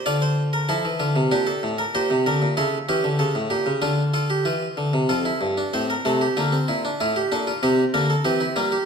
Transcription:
0.06 0.66 D3 medium
0.06 0.66 F4 medium
0.06 0.21 D5 loud
0.22 0.41 C5 medium
0.53 0.68 A#4 medium
0.69 0.84 F3 medium
0.69 1.29 E4 medium
0.69 0.88 A4 loud
0.85 1.00 E3 medium
1.00 1.15 D3 medium
1.00 1.19 F4 medium
1.16 1.31 C3 medium
1.31 1.51 A#2 medium
1.31 1.92 D4 medium
1.31 1.46 G4 medium
1.47 1.66 A4 medium
1.63 1.82 A2 medium
1.78 1.93 A#4 medium
1.95 2.10 A#2 medium
1.95 2.55 G4 medium
1.95 2.14 C5 loud
2.10 2.25 C3 medium
2.26 2.41 D3 medium
2.26 2.46 A#4 medium
2.42 2.57 A#2 medium
2.57 2.77 C#3 medium
2.57 2.76 E4 medium
2.57 2.77 A4 loud
2.89 3.04 E3 medium
2.89 3.80 C#4 medium
2.89 3.08 G4 loud
3.04 3.19 D3 medium
3.19 3.35 C#3 medium
3.19 3.39 A4 medium
3.35 3.51 A2 medium
3.50 3.66 A#2 medium
3.50 3.70 G4 medium
3.66 3.82 C#3 medium
3.82 4.43 D3 medium
3.82 4.02 D4 medium
3.82 4.02 F4 medium
4.14 4.44 F4 medium
4.14 4.29 A4 medium
4.30 4.45 G4 medium
4.45 4.65 E3 medium
4.45 5.07 F4 medium
4.77 4.93 D3 medium
4.93 5.09 C3 medium
5.09 5.29 F2 medium
5.09 5.25 F4 loud
5.09 5.71 A4 medium
5.25 5.45 E4 medium
5.41 5.61 G2 medium
5.58 5.73 D4 medium
5.74 5.93 A2 medium
5.74 5.93 C4 medium
5.74 5.89 C5 medium
5.90 6.05 A#4 medium
6.05 6.25 C3 medium
6.05 6.25 A3 medium
6.05 6.21 A4 medium
6.21 6.37 G4 medium
6.37 6.57 D3 medium
6.37 6.52 A#3 medium
6.37 6.56 F4 medium
6.52 6.72 C4 medium
6.68 6.88 A#2 medium
6.68 6.88 E4 medium
6.85 7.00 D4 medium
7.00 7.20 A2 medium
7.00 7.20 E4 loud
7.00 7.16 F4 medium
7.16 7.31 G4 medium
7.32 7.51 A#2 medium
7.32 7.51 D4 loud
7.32 7.47 A4 medium
7.47 7.62 F4 medium
7.63 7.82 C3 medium
7.63 7.82 C4 medium
7.63 7.82 G4 medium
7.94 8.13 D3 medium
7.94 8.13 A#3 medium
7.94 8.09 A#4 medium
8.10 8.25 A4 medium
8.25 8.44 E3 medium
8.25 8.44 C4 loud
8.25 8.40 G4 medium
8.41 8.56 E4 medium
8.56 8.76 G3 medium
8.56 8.76 A#3 medium
8.56 8.71 F4 medium
8.72 8.85 G4 medium

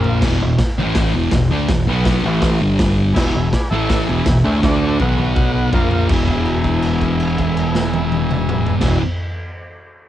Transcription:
0.00 0.20 A#1 medium
0.00 0.23 A#2 loud
0.00 0.23 F3 medium
0.00 0.24 A#3 loud
0.00 0.18 F4 medium
0.00 0.19 A#4 medium
0.00 0.19 F5 medium
0.04 floor tom loud
0.22 0.40 E1 medium
0.22 0.41 E2 medium
0.22 0.41 B2 loud
0.22 0.42 E3 loud
0.22 kick loud
0.22 snare loud
0.22 crash loud
0.42 0.58 E1 medium
0.42 0.57 E2 medium
0.42 0.57 B2 medium
0.59 kick loud
0.59 snare loud
0.59 open hi-hat medium
0.78 1.12 A1 loud
0.78 1.14 A2 medium
0.78 1.14 E3 medium
0.78 1.15 A3 loud
0.95 kick loud
0.95 snare loud
0.95 open hi-hat medium
1.14 1.31 E1 medium
1.14 1.32 E2 medium
1.14 1.32 B2 medium
1.14 1.33 E3 loud
1.31 1.49 E1 medium
1.31 1.48 E2 medium
1.31 1.48 B2 medium
1.31 kick loud
1.31 snare loud
1.31 open hi-hat medium
1.50 1.67 D2 loud
1.50 1.69 D3 medium
1.50 1.69 A3 loud
1.50 1.70 D4 loud
1.68 1.86 E1 medium
1.68 1.84 E2 medium
1.68 1.85 B2 medium
1.68 kick loud
1.68 snare loud
1.68 open hi-hat medium
1.87 2.22 B1 loud
1.87 2.24 B2 loud
1.87 2.24 F#3 medium
1.87 2.24 B3 medium
2.05 kick loud
2.05 snare loud
2.05 open hi-hat medium
2.24 2.59 A1 loud
2.24 2.60 A2 medium
2.24 2.61 E3 loud
2.24 2.61 A3 loud
2.42 kick loud
2.42 snare loud
2.42 open hi-hat medium
2.61 3.12 G1 medium
2.61 3.15 G2 medium
2.61 3.16 D3 loud
2.61 3.16 G3 loud
2.79 kick loud
2.79 snare loud
2.79 open hi-hat medium
3.13 3.33 E1 loud
3.13 3.34 E2 loud
3.13 3.30 G#4 loud
3.13 3.30 B4 medium
3.13 3.31 E5 loud
3.13 kick loud
3.13 snare loud
3.13 crash loud
3.17 3.34 B2 loud
3.17 3.35 E3 loud
3.31 3.52 E1 medium
3.31 3.50 E2 medium
3.31 3.48 G#4 medium
3.31 3.49 B4 medium
3.31 3.49 E5 medium
3.35 3.50 B2 medium
3.51 3.68 G#4 medium
3.51 3.68 B4 medium
3.51 3.69 D5 loud
3.51 kick loud
3.51 snare loud
3.51 open hi-hat medium
3.70 4.05 A1 medium
3.70 4.08 A2 loud
3.70 4.08 E3 loud
3.70 4.08 A3 loud
3.70 4.02 E4 loud
3.70 4.01 A4 medium
3.70 4.02 E5 loud
3.90 kick loud
3.90 snare loud
3.90 open hi-hat medium
4.06 4.26 E1 medium
4.06 4.26 E2 medium
4.06 4.27 B2 loud
4.06 4.27 E3 loud
4.06 4.38 E4 medium
4.06 4.38 G#4 medium
4.06 4.39 B4 loud
4.26 4.43 E1 medium
4.26 4.42 E2 medium
4.26 4.42 B2 medium
4.26 kick loud
4.26 snare loud
4.26 open hi-hat medium
4.44 4.61 D2 loud
4.44 4.62 D3 loud
4.44 4.62 A3 loud
4.44 4.63 D4 medium
4.44 4.60 E4 medium
4.44 4.60 G#4 medium
4.44 4.61 C#5 loud
4.63 4.97 D2 loud
4.63 4.99 D3 loud
4.63 5.00 A3 loud
4.63 4.79 D4 loud
4.63 5.00 D4 loud
4.63 4.79 A4 loud
4.63 4.79 D5 loud
4.63 kick loud
4.63 snare medium
4.82 4.97 D4 medium
4.82 4.98 A4 medium
4.82 4.98 D5 medium
4.99 5.69 B1 loud
4.99 5.73 B2 medium
4.99 5.73 F#3 loud
4.99 5.73 B3 loud
4.99 5.15 F#4 medium
4.99 5.15 B4 medium
4.99 5.16 F#5 loud
4.99 kick loud
4.99 high tom medium
5.16 5.33 F#4 medium
5.16 5.33 B4 medium
5.16 5.33 C#5 medium
5.16 high tom medium
5.35 5.51 F#4 medium
5.35 5.52 B4 medium
5.35 5.52 F#5 medium
5.35 kick loud
5.35 mid tom medium
5.53 5.70 F#4 loud
5.53 5.71 B4 loud
5.53 5.71 F#5 loud
5.73 6.08 A#1 loud
5.73 6.09 A#2 medium
5.73 6.10 F3 loud
5.73 6.10 A#3 medium
5.73 5.89 F4 loud
5.73 5.89 A#4 loud
5.73 5.90 F5 loud
5.73 kick loud
5.73 floor tom loud
5.91 6.07 F4 medium
5.91 6.07 A#4 medium
5.91 6.08 F5 medium
5.91 floor tom medium
6.09 8.73 E1 loud
6.09 8.79 E2 loud
6.09 8.81 B2 loud
6.09 kick loud
6.09 crash loud
6.13 8.84 E3 loud
6.13 8.75 G#4 medium
6.13 8.75 B4 medium
6.13 8.75 E5 loud
6.27 kick medium
6.27 crash medium
6.45 crash soft
6.64 kick medium
6.64 crash soft
6.82 crash medium
7.01 kick medium
7.01 crash soft
7.20 crash medium
7.38 kick medium
7.38 crash medium
7.57 crash medium
7.75 snare loud
7.94 high tom medium
8.12 high tom medium
8.31 mid tom loud
8.49 mid tom loud
8.67 floor tom loud
8.80 8.97 E1 medium
8.80 8.97 E2 loud
8.80 8.98 B2 loud
8.80 8.98 G#4 medium
8.80 8.98 B4 medium
8.80 kick loud
8.80 snare loud
8.80 crash loud
8.84 8.99 E3 loud
8.84 8.98 E5 loud

